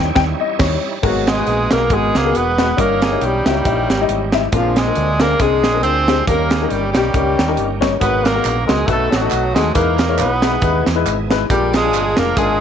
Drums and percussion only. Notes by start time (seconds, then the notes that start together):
0.16 kick, snare
0.59 kick, snare, crash
1.03 kick, crash
1.27 snare, closed hi-hat
1.47 closed hi-hat
1.71 snare, closed hi-hat
1.90 kick, closed hi-hat
2.15 snare, closed hi-hat
2.35 closed hi-hat
2.58 snare, closed hi-hat
2.78 kick, closed hi-hat
3.02 snare, closed hi-hat
3.21 closed hi-hat
3.46 snare, closed hi-hat
3.65 kick, closed hi-hat
3.90 snare, closed hi-hat
4.09 closed hi-hat
4.32 snare, closed hi-hat
4.52 kick, closed hi-hat
4.76 snare, closed hi-hat
4.95 closed hi-hat
5.20 snare, closed hi-hat
5.39 kick, closed hi-hat
5.64 snare, closed hi-hat
5.83 closed hi-hat
6.08 snare, closed hi-hat
6.27 kick, closed hi-hat
6.50 snare, closed hi-hat
6.70 closed hi-hat
6.95 snare, closed hi-hat
7.14 kick, closed hi-hat
7.39 snare, closed hi-hat
7.57 closed hi-hat
7.82 kick, snare, closed hi-hat
8.01 kick, closed hi-hat, tambourine
8.25 snare, closed hi-hat, tambourine
8.45 clap, closed hi-hat, tambourine
8.69 snare, closed hi-hat, tambourine
8.88 kick, closed hi-hat, tambourine
9.12 snare, closed hi-hat, tambourine
9.31 clap, closed hi-hat, tambourine
9.56 snare, closed hi-hat, tambourine
9.75 kick, closed hi-hat, tambourine
9.98 snare, closed hi-hat, tambourine
10.18 clap, closed hi-hat, tambourine
10.42 snare, closed hi-hat, tambourine
10.62 kick, closed hi-hat, tambourine
10.86 snare, closed hi-hat, tambourine
11.06 clap, closed hi-hat, tambourine
11.31 snare, closed hi-hat, tambourine
11.50 kick, closed hi-hat, tambourine
11.73 snare, closed hi-hat, tambourine
11.93 clap, closed hi-hat, tambourine
12.17 snare, closed hi-hat, tambourine
12.37 kick, closed hi-hat, tambourine